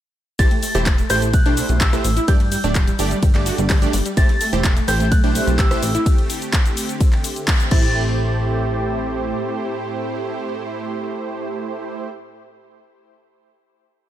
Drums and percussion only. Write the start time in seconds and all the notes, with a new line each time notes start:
0.39 kick, closed hi-hat, ride, shaker
0.51 closed hi-hat
0.63 open hi-hat, shaker
0.75 closed hi-hat, shaker
0.86 kick, clap, closed hi-hat, ride, shaker
0.98 closed hi-hat, shaker
1.10 cross-stick, open hi-hat, shaker
1.22 closed hi-hat, shaker
1.34 kick, closed hi-hat, ride, shaker
1.46 closed hi-hat
1.57 open hi-hat, shaker
1.69 closed hi-hat, shaker
1.81 kick, clap, closed hi-hat, ride, shaker
1.93 cross-stick, closed hi-hat, shaker
2.04 open hi-hat, shaker
2.17 closed hi-hat, shaker
2.28 kick, closed hi-hat, ride, shaker
2.40 closed hi-hat
2.52 open hi-hat, shaker
2.64 closed hi-hat, shaker
2.75 kick, clap, closed hi-hat, ride, shaker
2.88 closed hi-hat, shaker
2.99 open hi-hat, shaker
3.11 closed hi-hat, shaker
3.23 kick, closed hi-hat, ride, shaker
3.35 clap, closed hi-hat
3.46 open hi-hat, shaker
3.58 closed hi-hat, shaker
3.70 kick, clap, open hi-hat, ride, shaker
3.82 closed hi-hat, shaker
3.93 open hi-hat, shaker
4.06 closed hi-hat, shaker
4.17 kick, closed hi-hat, ride, shaker
4.29 closed hi-hat
4.41 open hi-hat, shaker
4.53 closed hi-hat, shaker
4.64 kick, clap, closed hi-hat, ride, shaker
4.77 closed hi-hat, shaker
4.88 cross-stick, open hi-hat, shaker
5.00 closed hi-hat, shaker
5.12 kick, closed hi-hat, ride, shaker
5.24 closed hi-hat
5.35 open hi-hat, shaker
5.48 closed hi-hat, shaker
5.59 kick, clap, closed hi-hat, ride, shaker
5.71 cross-stick, closed hi-hat, shaker
5.83 open hi-hat, shaker
5.95 closed hi-hat, shaker
6.06 kick, closed hi-hat, ride, shaker
6.18 closed hi-hat
6.30 open hi-hat, shaker
6.42 closed hi-hat, shaker
6.53 kick, clap, closed hi-hat, ride, shaker
6.66 closed hi-hat, shaker
6.77 open hi-hat, shaker
6.89 closed hi-hat, shaker
7.01 kick, closed hi-hat, ride, shaker
7.13 clap, closed hi-hat
7.24 open hi-hat, shaker
7.36 closed hi-hat, shaker
7.48 kick, clap, open hi-hat, ride, shaker
7.60 closed hi-hat, shaker
7.71 kick, crash